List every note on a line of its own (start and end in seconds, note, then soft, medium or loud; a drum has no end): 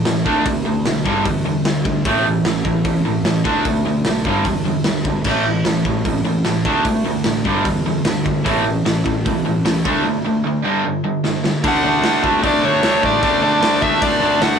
0.05 0.23 A1 medium
0.05 0.25 A2 medium
0.05 0.25 E3 medium
0.05 snare loud
0.05 open hi-hat medium
0.26 0.43 D2 medium
0.26 0.45 D3 medium
0.26 0.45 A3 loud
0.26 0.46 D4 medium
0.26 kick medium
0.45 0.63 D2 medium
0.45 0.64 D3 medium
0.45 0.64 A3 medium
0.45 kick loud
0.45 open hi-hat medium
0.66 0.83 D2 medium
0.66 0.84 D3 medium
0.66 0.84 A3 medium
0.85 1.03 B1 medium
0.85 1.04 D3 medium
0.85 1.05 A3 medium
0.85 snare loud
0.85 open hi-hat medium
1.05 1.23 G1 medium
1.05 1.24 G2 medium
1.05 1.25 D3 medium
1.05 1.25 G3 loud
1.05 kick medium
1.25 1.60 E2 medium
1.25 1.44 G2 medium
1.25 1.44 D3 medium
1.25 kick loud
1.25 open hi-hat medium
1.45 1.64 G2 medium
1.45 1.64 D3 medium
1.65 1.82 D2 medium
1.65 1.83 G2 medium
1.65 1.84 D3 medium
1.65 snare loud
1.65 open hi-hat medium
1.84 2.06 D2 medium
1.84 2.03 G2 medium
1.84 2.03 D3 medium
1.84 kick medium
2.05 2.39 A1 medium
2.05 2.25 A2 medium
2.05 2.25 E3 medium
2.05 2.25 A3 medium
2.05 kick loud
2.05 open hi-hat medium
2.26 2.44 A2 medium
2.26 2.44 E3 medium
2.44 2.62 A1 loud
2.44 2.64 A2 medium
2.44 2.64 E3 medium
2.44 snare loud
2.44 open hi-hat medium
2.65 2.82 A1 medium
2.65 2.83 A2 medium
2.65 2.84 E3 medium
2.65 kick medium
2.84 3.02 C#2 medium
2.84 3.03 A2 medium
2.84 3.03 E3 medium
2.84 kick medium
2.84 open hi-hat medium
3.05 3.22 A1 medium
3.05 3.23 A2 medium
3.05 3.24 E3 medium
3.24 3.42 A1 medium
3.24 3.44 A2 medium
3.24 3.44 E3 medium
3.24 snare loud
3.24 open hi-hat medium
3.44 3.62 D2 medium
3.44 3.64 D3 medium
3.44 3.64 A3 medium
3.44 3.64 D4 loud
3.44 kick medium
3.65 3.82 D2 loud
3.65 3.84 D3 medium
3.65 3.84 A3 medium
3.65 kick loud
3.65 open hi-hat medium
3.85 4.02 D2 medium
3.85 4.04 D3 medium
3.85 4.04 A3 medium
4.04 4.22 B1 medium
4.04 4.24 D3 medium
4.04 4.24 A3 medium
4.04 snare loud
4.04 open hi-hat medium
4.25 4.42 G1 medium
4.25 4.44 G2 medium
4.25 4.44 D3 medium
4.25 4.45 G3 loud
4.25 kick medium
4.44 4.79 E2 medium
4.44 4.63 G2 medium
4.44 4.63 D3 medium
4.44 kick medium
4.44 open hi-hat medium
4.65 4.83 G2 medium
4.65 4.83 D3 medium
4.84 5.02 D2 medium
4.84 5.03 G2 medium
4.84 5.03 D3 medium
4.84 snare loud
4.84 open hi-hat medium
5.04 5.22 D2 medium
5.04 5.23 G2 medium
5.04 5.23 D3 medium
5.04 kick loud
5.24 5.59 A1 medium
5.24 5.43 A2 medium
5.24 5.44 E3 medium
5.24 5.44 A3 medium
5.24 kick loud
5.24 crash loud
5.45 5.63 A2 medium
5.45 5.63 E3 medium
5.64 5.82 A1 medium
5.64 5.83 A2 medium
5.64 5.83 E3 medium
5.64 snare loud
5.64 open hi-hat medium
5.85 6.02 A1 medium
5.85 6.03 A2 medium
5.85 6.04 E3 medium
5.85 kick medium
6.05 6.22 C#2 loud
6.05 6.23 A2 medium
6.05 6.24 E3 medium
6.05 kick medium
6.05 open hi-hat medium
6.23 6.41 A1 medium
6.23 6.43 A2 medium
6.23 6.43 E3 medium
6.44 6.62 A1 medium
6.44 6.63 A2 medium
6.44 6.63 E3 medium
6.44 snare medium
6.44 open hi-hat medium
6.65 6.82 D2 medium
6.65 6.83 D3 medium
6.65 6.84 A3 loud
6.65 6.84 D4 loud
6.65 kick medium
6.84 7.02 D2 medium
6.84 7.03 D3 medium
6.84 7.03 A3 medium
6.84 kick loud
6.84 open hi-hat medium
7.04 7.21 D2 medium
7.04 7.23 D3 medium
7.04 7.23 A3 medium
7.24 7.42 A1 medium
7.24 7.43 D3 medium
7.24 7.43 A3 medium
7.24 snare loud
7.24 open hi-hat medium
7.45 7.62 G1 medium
7.45 7.64 G2 medium
7.45 7.64 D3 loud
7.45 7.64 G3 loud
7.45 kick medium
7.65 7.99 E2 medium
7.65 7.83 G2 medium
7.65 7.83 D3 medium
7.65 kick loud
7.65 open hi-hat medium
7.86 8.03 G2 medium
7.86 8.03 D3 medium
8.05 8.22 D2 medium
8.05 8.23 G2 medium
8.05 8.23 D3 medium
8.05 snare loud
8.05 open hi-hat medium
8.25 8.42 D2 medium
8.25 8.43 G2 medium
8.25 8.43 D3 medium
8.25 kick medium
8.44 8.79 A1 loud
8.44 8.63 A2 medium
8.44 8.63 E3 medium
8.44 8.63 A3 medium
8.44 kick loud
8.44 open hi-hat medium
8.65 8.83 A2 medium
8.65 8.83 E3 medium
8.85 9.02 A1 medium
8.85 9.03 A2 medium
8.85 9.03 E3 medium
8.85 snare loud
8.85 open hi-hat medium
9.05 9.22 A1 medium
9.05 9.23 A2 medium
9.05 9.23 E3 medium
9.05 kick medium
9.26 9.42 C#2 medium
9.26 9.43 A2 medium
9.26 9.43 E3 medium
9.26 kick loud
9.26 open hi-hat soft
9.45 9.62 A1 medium
9.45 9.63 A2 medium
9.45 9.63 E3 medium
9.65 9.82 C#2 medium
9.65 9.82 A2 medium
9.65 9.83 E3 loud
9.65 snare loud
9.65 open hi-hat medium
9.85 10.02 D2 medium
9.85 10.03 D3 medium
9.85 10.03 A3 loud
9.85 10.04 D4 medium
9.85 kick medium
10.04 10.22 D3 medium
10.04 10.22 A3 medium
10.26 10.43 D3 medium
10.26 10.43 A3 medium
10.47 10.63 D3 medium
10.47 10.63 A3 medium
10.65 10.83 G2 medium
10.65 10.83 D3 loud
10.65 10.83 G3 loud
10.85 11.02 G2 medium
10.85 11.02 D3 medium
11.04 11.22 G2 medium
11.04 11.22 D3 medium
11.24 11.42 G2 medium
11.24 11.42 D3 medium
11.24 snare medium
11.44 11.62 G2 medium
11.44 11.62 D3 medium
11.44 snare loud
11.64 11.83 D2 loud
11.64 11.83 D3 medium
11.64 11.84 A3 medium
11.64 11.84 D4 loud
11.64 kick loud
11.64 open hi-hat medium
11.68 12.21 F#5 loud
11.84 12.03 D2 medium
11.84 12.02 D3 medium
11.84 12.02 A3 loud
11.84 12.03 D4 loud
12.03 12.23 D2 medium
12.03 12.22 D3 medium
12.03 12.23 A3 loud
12.03 12.23 D4 loud
12.03 snare loud
12.03 open hi-hat medium
12.23 12.43 D2 medium
12.23 12.42 D3 medium
12.23 12.44 A3 loud
12.23 12.43 D4 loud
12.23 kick medium
12.43 12.62 D2 loud
12.43 12.62 D3 medium
12.43 12.63 A3 medium
12.43 12.62 D4 medium
12.43 12.65 D5 medium
12.43 kick loud
12.43 open hi-hat medium
12.63 12.83 D2 medium
12.63 12.81 D3 medium
12.63 12.83 A3 medium
12.63 12.83 D4 loud
12.63 13.05 C#5 loud
12.83 13.02 D2 medium
12.83 13.01 D3 medium
12.83 13.03 A3 medium
12.83 13.02 D4 loud
12.83 snare loud
12.83 open hi-hat medium
13.02 13.22 A1 medium
13.02 13.22 D3 medium
13.02 13.23 A3 medium
13.02 13.22 D4 medium
13.02 13.23 D5 medium
13.02 kick medium
13.23 13.42 D2 loud
13.23 13.40 D3 medium
13.23 13.41 A3 medium
13.23 13.40 D4 loud
13.23 13.42 D5 loud
13.23 kick loud
13.23 open hi-hat medium
13.41 13.61 D2 medium
13.41 13.60 D3 medium
13.41 13.61 A3 medium
13.41 13.61 D4 loud
13.41 13.82 D5 loud
13.61 13.81 D2 medium
13.61 13.80 D3 medium
13.61 13.81 A3 loud
13.61 13.80 D4 medium
13.61 snare loud
13.61 open hi-hat medium
13.81 14.01 D2 medium
13.81 13.99 D3 loud
13.81 14.01 A3 loud
13.81 14.01 D4 loud
13.81 14.02 E5 medium
13.81 kick medium
14.00 14.20 D2 loud
14.00 14.19 D3 medium
14.00 14.20 A3 medium
14.00 14.20 D4 medium
14.00 14.42 D5 loud
14.00 kick loud
14.00 open hi-hat medium
14.20 14.40 D2 medium
14.20 14.40 D3 loud
14.20 14.42 A3 loud
14.20 14.41 D4 loud
14.41 14.59 D2 medium
14.41 14.59 D3 loud
14.41 14.59 A3 loud
14.41 14.59 D4 loud
14.41 14.59 F#5 loud
14.41 snare loud
14.41 open hi-hat medium